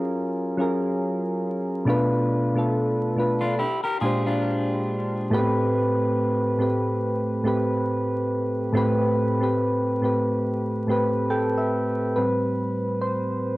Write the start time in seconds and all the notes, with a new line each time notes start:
Already playing: F#3 C#4 F4 G#4 A#4
0.57 F#3 C#4 F4 G#4
0.61 A#4
1.85 B2 A3 D4 F4
1.90 B4
2.54 B2 A3 D4 F4
2.59 A4
3.15 B2 A3 D4 F4
3.20 B4
3.41 D4 F4
3.59 E4 G4
3.84 G4 A#4
4.01 A#2 G#3 D4 F4 G4 G#4
4.06 C5
4.26 D4 F4
5.30 A2 A3 B3 G4
5.34 B4
5.38 C4
6.58 A2 A3 C4 G4
6.62 B4
7.43 A2 A3 C4 G4
7.47 B4
8.72 A2 A3 C4 G4
8.77 B4
9.40 A2 A3 C4 G4
9.44 B4
10.01 A2 A3 C4 G4
10.05 B4
10.87 A2 A3 C4 G4
10.91 B4
11.30 A4 G5
11.58 E5
12.16 A2 G3 C4 B4
13.02 C5